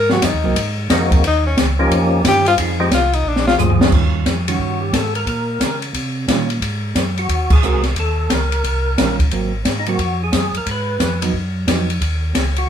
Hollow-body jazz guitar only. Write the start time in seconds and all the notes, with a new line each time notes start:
0.10 F#3 A#3 C4
0.44 F#3 A#3 C4
2.24 D#3 G3 C#4 F4
2.58 F3 C4 D#4 G#4
3.79 D#3 G3 C#4 F4
4.48 D#3 G3 C#4
6.29 D#3 G3 C#4 F4
7.63 G#3 C4 F#4 A#4
8.98 D#3 G3 C#4 F4
9.32 F#3 A#3 C4
9.87 F#3 A#3 C4
11.22 F#3 B3 D#4
11.68 F#3 B3 D#4